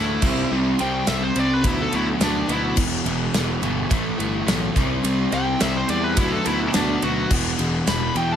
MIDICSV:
0, 0, Header, 1, 5, 480
1, 0, Start_track
1, 0, Key_signature, 1, "minor"
1, 0, Tempo, 566572
1, 436, Time_signature, 4, 2, 24, 8
1, 7083, End_track
2, 0, Start_track
2, 0, Title_t, "Lead electric guitar"
2, 0, Program_c, 0, 29
2, 0, Note_on_c, 0, 64, 103
2, 429, Note_off_c, 0, 64, 0
2, 684, Note_on_c, 0, 79, 99
2, 913, Note_off_c, 0, 79, 0
2, 917, Note_on_c, 0, 76, 93
2, 1033, Note_off_c, 0, 76, 0
2, 1045, Note_on_c, 0, 72, 85
2, 1179, Note_off_c, 0, 72, 0
2, 1179, Note_on_c, 0, 74, 90
2, 1299, Note_off_c, 0, 74, 0
2, 1299, Note_on_c, 0, 71, 89
2, 1405, Note_off_c, 0, 71, 0
2, 1417, Note_on_c, 0, 64, 91
2, 1524, Note_off_c, 0, 64, 0
2, 1538, Note_on_c, 0, 69, 94
2, 1643, Note_on_c, 0, 64, 91
2, 1644, Note_off_c, 0, 69, 0
2, 1756, Note_off_c, 0, 64, 0
2, 1888, Note_on_c, 0, 62, 99
2, 2115, Note_off_c, 0, 62, 0
2, 2137, Note_on_c, 0, 64, 97
2, 2360, Note_off_c, 0, 64, 0
2, 4524, Note_on_c, 0, 79, 111
2, 4753, Note_off_c, 0, 79, 0
2, 4756, Note_on_c, 0, 76, 89
2, 4873, Note_off_c, 0, 76, 0
2, 4889, Note_on_c, 0, 72, 76
2, 4997, Note_off_c, 0, 72, 0
2, 4997, Note_on_c, 0, 74, 87
2, 5116, Note_off_c, 0, 74, 0
2, 5116, Note_on_c, 0, 71, 80
2, 5233, Note_off_c, 0, 71, 0
2, 5236, Note_on_c, 0, 64, 108
2, 5349, Note_on_c, 0, 69, 96
2, 5353, Note_off_c, 0, 64, 0
2, 5469, Note_off_c, 0, 69, 0
2, 5477, Note_on_c, 0, 64, 97
2, 5593, Note_off_c, 0, 64, 0
2, 5715, Note_on_c, 0, 62, 100
2, 5949, Note_off_c, 0, 62, 0
2, 5955, Note_on_c, 0, 66, 90
2, 6189, Note_off_c, 0, 66, 0
2, 6678, Note_on_c, 0, 83, 121
2, 6910, Note_off_c, 0, 83, 0
2, 6920, Note_on_c, 0, 79, 101
2, 7053, Note_off_c, 0, 79, 0
2, 7053, Note_on_c, 0, 81, 88
2, 7083, Note_off_c, 0, 81, 0
2, 7083, End_track
3, 0, Start_track
3, 0, Title_t, "Overdriven electric guitar"
3, 0, Program_c, 1, 29
3, 0, Note_on_c, 1, 45, 83
3, 0, Note_on_c, 1, 52, 85
3, 0, Note_on_c, 1, 57, 105
3, 180, Note_off_c, 1, 45, 0
3, 183, Note_off_c, 1, 52, 0
3, 185, Note_off_c, 1, 57, 0
3, 194, Note_on_c, 1, 48, 90
3, 201, Note_on_c, 1, 55, 92
3, 202, Note_on_c, 1, 60, 99
3, 428, Note_off_c, 1, 48, 0
3, 432, Note_off_c, 1, 55, 0
3, 434, Note_off_c, 1, 60, 0
3, 438, Note_on_c, 1, 48, 100
3, 442, Note_on_c, 1, 55, 102
3, 444, Note_on_c, 1, 60, 110
3, 666, Note_off_c, 1, 48, 0
3, 670, Note_off_c, 1, 55, 0
3, 674, Note_off_c, 1, 60, 0
3, 676, Note_on_c, 1, 48, 73
3, 680, Note_on_c, 1, 55, 94
3, 684, Note_on_c, 1, 60, 88
3, 900, Note_off_c, 1, 48, 0
3, 904, Note_off_c, 1, 55, 0
3, 907, Note_off_c, 1, 60, 0
3, 910, Note_on_c, 1, 48, 96
3, 914, Note_on_c, 1, 55, 91
3, 918, Note_on_c, 1, 60, 95
3, 1138, Note_off_c, 1, 48, 0
3, 1142, Note_off_c, 1, 55, 0
3, 1148, Note_off_c, 1, 60, 0
3, 1148, Note_on_c, 1, 48, 87
3, 1153, Note_on_c, 1, 55, 96
3, 1158, Note_on_c, 1, 60, 101
3, 1378, Note_off_c, 1, 48, 0
3, 1380, Note_off_c, 1, 55, 0
3, 1383, Note_off_c, 1, 60, 0
3, 1392, Note_on_c, 1, 47, 105
3, 1395, Note_on_c, 1, 54, 108
3, 1399, Note_on_c, 1, 59, 109
3, 1626, Note_off_c, 1, 47, 0
3, 1633, Note_off_c, 1, 54, 0
3, 1636, Note_on_c, 1, 47, 87
3, 1637, Note_off_c, 1, 59, 0
3, 1644, Note_on_c, 1, 54, 101
3, 1647, Note_on_c, 1, 59, 104
3, 1865, Note_off_c, 1, 47, 0
3, 1869, Note_off_c, 1, 54, 0
3, 1869, Note_off_c, 1, 59, 0
3, 1876, Note_on_c, 1, 47, 78
3, 1879, Note_on_c, 1, 54, 86
3, 1879, Note_on_c, 1, 59, 91
3, 2096, Note_off_c, 1, 47, 0
3, 2104, Note_off_c, 1, 54, 0
3, 2107, Note_on_c, 1, 47, 83
3, 2108, Note_off_c, 1, 59, 0
3, 2115, Note_on_c, 1, 54, 86
3, 2118, Note_on_c, 1, 59, 90
3, 2337, Note_off_c, 1, 47, 0
3, 2341, Note_off_c, 1, 54, 0
3, 2343, Note_off_c, 1, 59, 0
3, 2344, Note_on_c, 1, 40, 105
3, 2350, Note_on_c, 1, 47, 100
3, 2352, Note_on_c, 1, 52, 113
3, 2571, Note_off_c, 1, 40, 0
3, 2581, Note_off_c, 1, 47, 0
3, 2581, Note_on_c, 1, 40, 89
3, 2582, Note_off_c, 1, 52, 0
3, 2591, Note_on_c, 1, 47, 80
3, 2592, Note_on_c, 1, 52, 89
3, 2815, Note_off_c, 1, 40, 0
3, 2824, Note_off_c, 1, 47, 0
3, 2825, Note_on_c, 1, 40, 88
3, 2827, Note_off_c, 1, 52, 0
3, 2835, Note_on_c, 1, 47, 94
3, 2837, Note_on_c, 1, 52, 98
3, 3057, Note_off_c, 1, 40, 0
3, 3062, Note_off_c, 1, 47, 0
3, 3065, Note_off_c, 1, 52, 0
3, 3067, Note_on_c, 1, 40, 99
3, 3072, Note_on_c, 1, 47, 103
3, 3075, Note_on_c, 1, 52, 103
3, 3296, Note_off_c, 1, 52, 0
3, 3297, Note_off_c, 1, 40, 0
3, 3297, Note_off_c, 1, 47, 0
3, 3300, Note_on_c, 1, 45, 98
3, 3306, Note_on_c, 1, 52, 117
3, 3309, Note_on_c, 1, 57, 117
3, 3537, Note_off_c, 1, 45, 0
3, 3542, Note_off_c, 1, 52, 0
3, 3547, Note_on_c, 1, 45, 100
3, 3548, Note_off_c, 1, 57, 0
3, 3552, Note_on_c, 1, 52, 111
3, 3558, Note_on_c, 1, 57, 97
3, 3772, Note_off_c, 1, 45, 0
3, 3774, Note_off_c, 1, 52, 0
3, 3778, Note_off_c, 1, 57, 0
3, 3782, Note_on_c, 1, 45, 85
3, 3784, Note_on_c, 1, 52, 89
3, 3788, Note_on_c, 1, 57, 92
3, 4015, Note_off_c, 1, 45, 0
3, 4016, Note_off_c, 1, 52, 0
3, 4018, Note_off_c, 1, 57, 0
3, 4029, Note_on_c, 1, 48, 86
3, 4029, Note_on_c, 1, 55, 94
3, 4037, Note_on_c, 1, 60, 97
3, 4255, Note_off_c, 1, 48, 0
3, 4261, Note_off_c, 1, 55, 0
3, 4265, Note_on_c, 1, 48, 94
3, 4267, Note_off_c, 1, 60, 0
3, 4271, Note_on_c, 1, 55, 104
3, 4277, Note_on_c, 1, 60, 97
3, 4497, Note_off_c, 1, 48, 0
3, 4503, Note_off_c, 1, 55, 0
3, 4507, Note_on_c, 1, 48, 83
3, 4508, Note_off_c, 1, 60, 0
3, 4513, Note_on_c, 1, 55, 79
3, 4518, Note_on_c, 1, 60, 86
3, 4734, Note_off_c, 1, 48, 0
3, 4741, Note_off_c, 1, 55, 0
3, 4744, Note_off_c, 1, 60, 0
3, 4744, Note_on_c, 1, 48, 74
3, 4751, Note_on_c, 1, 55, 91
3, 4755, Note_on_c, 1, 60, 95
3, 4972, Note_off_c, 1, 48, 0
3, 4978, Note_off_c, 1, 55, 0
3, 4981, Note_off_c, 1, 60, 0
3, 4982, Note_on_c, 1, 48, 88
3, 4988, Note_on_c, 1, 55, 99
3, 4991, Note_on_c, 1, 60, 93
3, 5215, Note_off_c, 1, 48, 0
3, 5218, Note_off_c, 1, 55, 0
3, 5219, Note_off_c, 1, 60, 0
3, 5223, Note_on_c, 1, 47, 108
3, 5229, Note_on_c, 1, 59, 127
3, 5230, Note_on_c, 1, 54, 103
3, 5454, Note_off_c, 1, 47, 0
3, 5459, Note_off_c, 1, 54, 0
3, 5464, Note_on_c, 1, 47, 84
3, 5465, Note_off_c, 1, 59, 0
3, 5469, Note_on_c, 1, 54, 107
3, 5475, Note_on_c, 1, 59, 102
3, 5699, Note_off_c, 1, 47, 0
3, 5705, Note_off_c, 1, 54, 0
3, 5709, Note_off_c, 1, 59, 0
3, 5709, Note_on_c, 1, 47, 88
3, 5715, Note_on_c, 1, 54, 90
3, 5720, Note_on_c, 1, 59, 96
3, 5945, Note_off_c, 1, 47, 0
3, 5950, Note_off_c, 1, 54, 0
3, 5955, Note_off_c, 1, 59, 0
3, 5955, Note_on_c, 1, 47, 80
3, 5960, Note_on_c, 1, 54, 89
3, 5965, Note_on_c, 1, 59, 90
3, 6181, Note_off_c, 1, 47, 0
3, 6184, Note_off_c, 1, 54, 0
3, 6186, Note_off_c, 1, 59, 0
3, 6191, Note_on_c, 1, 40, 99
3, 6197, Note_on_c, 1, 47, 90
3, 6202, Note_on_c, 1, 52, 110
3, 6419, Note_off_c, 1, 40, 0
3, 6426, Note_off_c, 1, 47, 0
3, 6429, Note_off_c, 1, 52, 0
3, 6430, Note_on_c, 1, 40, 81
3, 6436, Note_on_c, 1, 47, 79
3, 6440, Note_on_c, 1, 52, 89
3, 6658, Note_off_c, 1, 40, 0
3, 6661, Note_off_c, 1, 47, 0
3, 6669, Note_off_c, 1, 52, 0
3, 6669, Note_on_c, 1, 40, 85
3, 6671, Note_on_c, 1, 47, 86
3, 6679, Note_on_c, 1, 52, 99
3, 6892, Note_off_c, 1, 40, 0
3, 6901, Note_off_c, 1, 47, 0
3, 6902, Note_on_c, 1, 40, 95
3, 6904, Note_off_c, 1, 52, 0
3, 6911, Note_on_c, 1, 47, 91
3, 6914, Note_on_c, 1, 52, 92
3, 7083, Note_off_c, 1, 40, 0
3, 7083, Note_off_c, 1, 47, 0
3, 7083, Note_off_c, 1, 52, 0
3, 7083, End_track
4, 0, Start_track
4, 0, Title_t, "Picked electric bass"
4, 0, Program_c, 2, 34
4, 0, Note_on_c, 2, 38, 90
4, 143, Note_off_c, 2, 38, 0
4, 188, Note_on_c, 2, 36, 101
4, 375, Note_off_c, 2, 36, 0
4, 435, Note_on_c, 2, 36, 81
4, 620, Note_off_c, 2, 36, 0
4, 680, Note_on_c, 2, 36, 95
4, 863, Note_off_c, 2, 36, 0
4, 916, Note_on_c, 2, 36, 90
4, 1100, Note_off_c, 2, 36, 0
4, 1152, Note_on_c, 2, 36, 94
4, 1390, Note_off_c, 2, 36, 0
4, 1390, Note_on_c, 2, 38, 89
4, 1577, Note_off_c, 2, 38, 0
4, 1634, Note_on_c, 2, 38, 85
4, 1819, Note_off_c, 2, 38, 0
4, 1865, Note_on_c, 2, 38, 95
4, 2054, Note_off_c, 2, 38, 0
4, 2106, Note_on_c, 2, 38, 98
4, 2294, Note_off_c, 2, 38, 0
4, 2348, Note_on_c, 2, 28, 83
4, 2535, Note_off_c, 2, 28, 0
4, 2586, Note_on_c, 2, 28, 102
4, 2774, Note_off_c, 2, 28, 0
4, 2830, Note_on_c, 2, 28, 93
4, 3017, Note_off_c, 2, 28, 0
4, 3065, Note_on_c, 2, 31, 84
4, 3254, Note_off_c, 2, 31, 0
4, 3312, Note_on_c, 2, 33, 91
4, 3498, Note_off_c, 2, 33, 0
4, 3549, Note_on_c, 2, 31, 88
4, 3736, Note_off_c, 2, 31, 0
4, 3784, Note_on_c, 2, 35, 94
4, 3973, Note_off_c, 2, 35, 0
4, 4033, Note_on_c, 2, 36, 96
4, 4218, Note_off_c, 2, 36, 0
4, 4269, Note_on_c, 2, 36, 96
4, 4456, Note_off_c, 2, 36, 0
4, 4511, Note_on_c, 2, 36, 99
4, 4697, Note_off_c, 2, 36, 0
4, 4753, Note_on_c, 2, 36, 99
4, 4938, Note_off_c, 2, 36, 0
4, 4988, Note_on_c, 2, 40, 81
4, 5231, Note_off_c, 2, 40, 0
4, 5231, Note_on_c, 2, 38, 92
4, 5417, Note_off_c, 2, 38, 0
4, 5474, Note_on_c, 2, 38, 91
4, 5659, Note_off_c, 2, 38, 0
4, 5713, Note_on_c, 2, 38, 85
4, 5898, Note_off_c, 2, 38, 0
4, 5954, Note_on_c, 2, 38, 96
4, 6139, Note_off_c, 2, 38, 0
4, 6191, Note_on_c, 2, 28, 90
4, 6377, Note_off_c, 2, 28, 0
4, 6430, Note_on_c, 2, 28, 85
4, 6617, Note_off_c, 2, 28, 0
4, 6667, Note_on_c, 2, 28, 95
4, 6855, Note_off_c, 2, 28, 0
4, 6907, Note_on_c, 2, 40, 92
4, 7083, Note_off_c, 2, 40, 0
4, 7083, End_track
5, 0, Start_track
5, 0, Title_t, "Drums"
5, 186, Note_on_c, 9, 49, 88
5, 189, Note_on_c, 9, 36, 106
5, 271, Note_off_c, 9, 49, 0
5, 274, Note_off_c, 9, 36, 0
5, 669, Note_on_c, 9, 51, 74
5, 753, Note_off_c, 9, 51, 0
5, 907, Note_on_c, 9, 51, 91
5, 910, Note_on_c, 9, 38, 107
5, 992, Note_off_c, 9, 51, 0
5, 994, Note_off_c, 9, 38, 0
5, 1149, Note_on_c, 9, 51, 72
5, 1234, Note_off_c, 9, 51, 0
5, 1390, Note_on_c, 9, 36, 117
5, 1390, Note_on_c, 9, 51, 98
5, 1474, Note_off_c, 9, 51, 0
5, 1475, Note_off_c, 9, 36, 0
5, 1631, Note_on_c, 9, 51, 73
5, 1716, Note_off_c, 9, 51, 0
5, 1870, Note_on_c, 9, 51, 94
5, 1873, Note_on_c, 9, 38, 108
5, 1955, Note_off_c, 9, 51, 0
5, 1957, Note_off_c, 9, 38, 0
5, 2111, Note_on_c, 9, 51, 72
5, 2196, Note_off_c, 9, 51, 0
5, 2345, Note_on_c, 9, 57, 106
5, 2349, Note_on_c, 9, 36, 114
5, 2430, Note_off_c, 9, 57, 0
5, 2433, Note_off_c, 9, 36, 0
5, 2592, Note_on_c, 9, 51, 67
5, 2677, Note_off_c, 9, 51, 0
5, 2831, Note_on_c, 9, 51, 82
5, 2834, Note_on_c, 9, 38, 103
5, 2916, Note_off_c, 9, 51, 0
5, 2918, Note_off_c, 9, 38, 0
5, 3074, Note_on_c, 9, 51, 63
5, 3159, Note_off_c, 9, 51, 0
5, 3312, Note_on_c, 9, 36, 127
5, 3313, Note_on_c, 9, 51, 98
5, 3396, Note_off_c, 9, 36, 0
5, 3398, Note_off_c, 9, 51, 0
5, 3558, Note_on_c, 9, 51, 73
5, 3643, Note_off_c, 9, 51, 0
5, 3796, Note_on_c, 9, 51, 96
5, 3799, Note_on_c, 9, 38, 113
5, 3881, Note_off_c, 9, 51, 0
5, 3884, Note_off_c, 9, 38, 0
5, 4033, Note_on_c, 9, 36, 106
5, 4039, Note_on_c, 9, 51, 71
5, 4118, Note_off_c, 9, 36, 0
5, 4124, Note_off_c, 9, 51, 0
5, 4274, Note_on_c, 9, 51, 106
5, 4359, Note_off_c, 9, 51, 0
5, 4509, Note_on_c, 9, 51, 70
5, 4594, Note_off_c, 9, 51, 0
5, 4748, Note_on_c, 9, 51, 92
5, 4751, Note_on_c, 9, 38, 107
5, 4833, Note_off_c, 9, 51, 0
5, 4836, Note_off_c, 9, 38, 0
5, 4987, Note_on_c, 9, 51, 74
5, 5072, Note_off_c, 9, 51, 0
5, 5225, Note_on_c, 9, 51, 114
5, 5228, Note_on_c, 9, 36, 123
5, 5310, Note_off_c, 9, 51, 0
5, 5313, Note_off_c, 9, 36, 0
5, 5469, Note_on_c, 9, 51, 82
5, 5554, Note_off_c, 9, 51, 0
5, 5708, Note_on_c, 9, 51, 95
5, 5711, Note_on_c, 9, 38, 112
5, 5793, Note_off_c, 9, 51, 0
5, 5795, Note_off_c, 9, 38, 0
5, 5950, Note_on_c, 9, 51, 71
5, 6035, Note_off_c, 9, 51, 0
5, 6190, Note_on_c, 9, 57, 104
5, 6191, Note_on_c, 9, 36, 117
5, 6275, Note_off_c, 9, 36, 0
5, 6275, Note_off_c, 9, 57, 0
5, 6430, Note_on_c, 9, 51, 70
5, 6514, Note_off_c, 9, 51, 0
5, 6670, Note_on_c, 9, 51, 82
5, 6672, Note_on_c, 9, 38, 93
5, 6755, Note_off_c, 9, 51, 0
5, 6757, Note_off_c, 9, 38, 0
5, 6910, Note_on_c, 9, 51, 66
5, 6995, Note_off_c, 9, 51, 0
5, 7083, End_track
0, 0, End_of_file